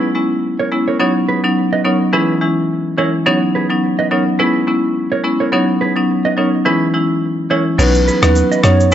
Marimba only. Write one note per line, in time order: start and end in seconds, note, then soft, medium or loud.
0.00 0.13 G#3 medium
0.00 0.13 B3 medium
0.00 0.13 C#4 medium
0.00 0.13 E4 loud
0.15 0.37 G#3 medium
0.15 0.37 B3 medium
0.15 0.37 C#4 medium
0.15 0.37 E4 medium
0.71 0.93 G#3 medium
0.71 0.93 B3 medium
0.71 0.93 C#4 medium
0.71 0.93 E4 medium
1.00 1.40 F#3 medium
1.00 1.40 B3 medium
1.00 1.40 C#4 medium
1.00 1.40 D#4 medium
1.44 1.64 F#3 medium
1.44 1.64 B3 medium
1.44 1.64 C#4 medium
1.44 1.64 D#4 medium
1.85 2.06 F#3 medium
1.85 2.06 B3 medium
1.85 2.07 C#4 medium
1.85 2.07 D#4 medium
2.13 2.39 E3 medium
2.13 2.39 G#3 medium
2.13 2.39 C#4 medium
2.13 2.39 E4 loud
2.41 2.63 E3 medium
2.41 2.63 G#3 medium
2.41 2.63 C#4 medium
2.41 2.63 E4 medium
2.98 3.19 E3 medium
2.98 3.20 G#3 medium
2.98 3.20 C#4 medium
2.98 3.20 E4 medium
3.26 3.66 F#3 medium
3.26 3.66 B3 medium
3.26 3.66 C#4 medium
3.26 3.66 D#4 loud
3.70 3.90 F#3 medium
3.70 3.90 B3 medium
3.70 3.90 C#4 medium
3.70 3.90 D#4 medium
4.11 4.33 F#3 medium
4.11 4.33 B3 medium
4.11 4.33 C#4 medium
4.11 4.33 D#4 medium
4.39 4.66 G#3 medium
4.39 4.66 B3 medium
4.39 4.66 C#4 medium
4.39 4.66 E4 medium
4.67 4.89 G#3 medium
4.67 4.89 B3 medium
4.67 4.89 C#4 medium
4.67 4.89 E4 medium
5.24 5.46 G#3 medium
5.24 5.46 B3 medium
5.24 5.46 C#4 medium
5.24 5.46 E4 medium
5.52 5.93 F#3 medium
5.52 5.93 B3 medium
5.52 5.93 C#4 medium
5.52 5.93 D#4 medium
5.96 6.16 F#3 medium
5.96 6.17 B3 medium
5.96 6.17 C#4 medium
5.96 6.17 D#4 medium
6.37 6.59 F#3 medium
6.37 6.59 B3 medium
6.37 6.59 C#4 medium
6.37 6.59 D#4 medium
6.65 6.92 E3 medium
6.65 6.92 G#3 medium
6.65 6.92 C#4 medium
6.65 6.92 E4 loud
6.94 7.16 E3 medium
6.94 7.16 G#3 medium
6.94 7.16 C#4 medium
6.94 7.16 E4 medium
7.50 7.72 E3 medium
7.50 7.72 G#3 medium
7.50 7.72 C#4 medium
7.50 7.72 E4 medium
7.78 8.19 F#3 medium
7.78 8.19 B3 medium
7.78 8.19 C#4 medium
7.78 8.19 D#4 loud
8.22 8.61 F#3 medium
8.22 8.61 B3 medium
8.22 8.61 C#4 medium
8.22 8.61 D#4 medium
8.63 8.90 F#3 medium
8.63 8.90 B3 medium
8.63 8.90 C#4 medium
8.63 8.90 D#4 medium